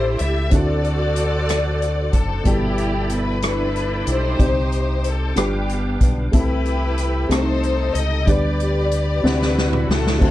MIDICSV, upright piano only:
0, 0, Header, 1, 2, 480
1, 0, Start_track
1, 0, Key_signature, 1, "major"
1, 0, Tempo, 645856
1, 388, Time_signature, 6, 3, 24, 8
1, 7661, End_track
2, 0, Start_track
2, 0, Title_t, "Upright piano"
2, 0, Program_c, 0, 0
2, 0, Control_c, 0, 64, 127
2, 0, Note_on_c, 0, 45, 49
2, 0, Note_on_c, 0, 57, 50
2, 0, Note_on_c, 0, 60, 47
2, 0, Note_on_c, 0, 62, 48
2, 0, Note_on_c, 0, 67, 47
2, 0, Note_on_c, 0, 69, 58
2, 351, Note_off_c, 0, 57, 0
2, 356, Note_off_c, 0, 60, 0
2, 360, Note_off_c, 0, 62, 0
2, 364, Note_off_c, 0, 67, 0
2, 369, Note_off_c, 0, 69, 0
2, 369, Note_on_c, 0, 60, 49
2, 381, Note_on_c, 0, 62, 48
2, 390, Note_on_c, 0, 50, 50
2, 392, Note_on_c, 0, 64, 46
2, 398, Note_off_c, 0, 45, 0
2, 398, Control_c, 0, 64, 0
2, 401, Note_on_c, 0, 66, 45
2, 406, Note_on_c, 0, 69, 53
2, 536, Control_c, 0, 64, 127
2, 1078, Note_off_c, 0, 50, 0
2, 1787, Note_off_c, 0, 60, 0
2, 1793, Note_off_c, 0, 62, 0
2, 1799, Note_off_c, 0, 64, 0
2, 1803, Note_off_c, 0, 66, 0
2, 1806, Note_off_c, 0, 69, 0
2, 1807, Note_on_c, 0, 47, 53
2, 1814, Note_on_c, 0, 74, 45
2, 1822, Note_on_c, 0, 52, 47
2, 1824, Note_on_c, 0, 43, 50
2, 1830, Note_on_c, 0, 67, 46
2, 1834, Control_c, 0, 64, 0
2, 1842, Note_on_c, 0, 69, 56
2, 1985, Control_c, 0, 64, 127
2, 2514, Note_off_c, 0, 43, 0
2, 3226, Note_off_c, 0, 47, 0
2, 3230, Note_off_c, 0, 74, 0
2, 3234, Note_off_c, 0, 52, 0
2, 3238, Note_off_c, 0, 67, 0
2, 3244, Note_off_c, 0, 69, 0
2, 3256, Note_on_c, 0, 60, 50
2, 3263, Note_on_c, 0, 74, 47
2, 3265, Note_on_c, 0, 48, 53
2, 3266, Note_on_c, 0, 63, 46
2, 3269, Note_on_c, 0, 67, 47
2, 3272, Note_on_c, 0, 72, 57
2, 3273, Control_c, 0, 64, 0
2, 3419, Control_c, 0, 64, 127
2, 3955, Note_off_c, 0, 48, 0
2, 3978, Note_on_c, 0, 59, 52
2, 3979, Note_off_c, 0, 67, 0
2, 3980, Note_off_c, 0, 60, 0
2, 3981, Note_on_c, 0, 62, 50
2, 3984, Note_off_c, 0, 74, 0
2, 3985, Note_off_c, 0, 63, 0
2, 3988, Note_off_c, 0, 72, 0
2, 3989, Note_on_c, 0, 43, 53
2, 3989, Note_on_c, 0, 65, 49
2, 3990, Note_on_c, 0, 67, 52
2, 3994, Control_c, 0, 64, 0
2, 3996, Note_on_c, 0, 71, 63
2, 4111, Control_c, 0, 64, 127
2, 4677, Note_off_c, 0, 43, 0
2, 4696, Note_on_c, 0, 57, 53
2, 4697, Note_off_c, 0, 67, 0
2, 4700, Note_on_c, 0, 60, 49
2, 4701, Note_off_c, 0, 59, 0
2, 4703, Note_off_c, 0, 62, 0
2, 4705, Note_on_c, 0, 48, 50
2, 4707, Note_off_c, 0, 65, 0
2, 4707, Note_on_c, 0, 64, 46
2, 4708, Note_on_c, 0, 67, 48
2, 4710, Note_off_c, 0, 71, 0
2, 4713, Control_c, 0, 64, 0
2, 4714, Note_on_c, 0, 69, 60
2, 4825, Control_c, 0, 64, 127
2, 5395, Note_off_c, 0, 48, 0
2, 5406, Note_off_c, 0, 57, 0
2, 5409, Note_off_c, 0, 60, 0
2, 5417, Note_on_c, 0, 57, 55
2, 5420, Note_off_c, 0, 67, 0
2, 5420, Note_on_c, 0, 60, 50
2, 5424, Note_off_c, 0, 69, 0
2, 5425, Note_on_c, 0, 62, 42
2, 5426, Note_off_c, 0, 64, 0
2, 5427, Note_on_c, 0, 48, 53
2, 5432, Note_on_c, 0, 67, 48
2, 5433, Control_c, 0, 64, 0
2, 5435, Note_on_c, 0, 69, 61
2, 5473, Note_off_c, 0, 62, 0
2, 5575, Control_c, 0, 64, 127
2, 6117, Note_off_c, 0, 48, 0
2, 6139, Note_on_c, 0, 55, 51
2, 6140, Note_off_c, 0, 67, 0
2, 6142, Note_off_c, 0, 57, 0
2, 6143, Note_off_c, 0, 60, 0
2, 6144, Note_on_c, 0, 59, 49
2, 6148, Note_on_c, 0, 62, 47
2, 6150, Note_off_c, 0, 69, 0
2, 6150, Note_on_c, 0, 50, 52
2, 6151, Note_on_c, 0, 67, 48
2, 6155, Control_c, 0, 64, 0
2, 6157, Note_on_c, 0, 71, 57
2, 6285, Control_c, 0, 64, 127
2, 6839, Note_off_c, 0, 50, 0
2, 6853, Note_off_c, 0, 62, 0
2, 6858, Note_on_c, 0, 60, 60
2, 6863, Note_off_c, 0, 55, 0
2, 6864, Note_off_c, 0, 71, 0
2, 6864, Note_on_c, 0, 62, 58
2, 6866, Note_off_c, 0, 59, 0
2, 6866, Note_on_c, 0, 64, 55
2, 6868, Note_on_c, 0, 48, 61
2, 6869, Note_off_c, 0, 67, 0
2, 6872, Note_on_c, 0, 78, 57
2, 6875, Note_on_c, 0, 71, 71
2, 6877, Control_c, 0, 64, 0
2, 7008, Control_c, 0, 64, 127
2, 7558, Note_off_c, 0, 48, 0
2, 7567, Note_off_c, 0, 60, 0
2, 7567, Note_on_c, 0, 57, 54
2, 7576, Note_off_c, 0, 62, 0
2, 7578, Note_on_c, 0, 60, 49
2, 7587, Note_on_c, 0, 62, 52
2, 7588, Note_off_c, 0, 64, 0
2, 7588, Note_on_c, 0, 50, 53
2, 7590, Note_off_c, 0, 78, 0
2, 7592, Note_off_c, 0, 71, 0
2, 7595, Note_on_c, 0, 66, 51
2, 7598, Control_c, 0, 64, 0
2, 7607, Note_on_c, 0, 69, 64
2, 7661, Note_off_c, 0, 50, 0
2, 7661, Note_off_c, 0, 57, 0
2, 7661, Note_off_c, 0, 60, 0
2, 7661, Note_off_c, 0, 62, 0
2, 7661, Note_off_c, 0, 66, 0
2, 7661, Note_off_c, 0, 69, 0
2, 7661, End_track
0, 0, End_of_file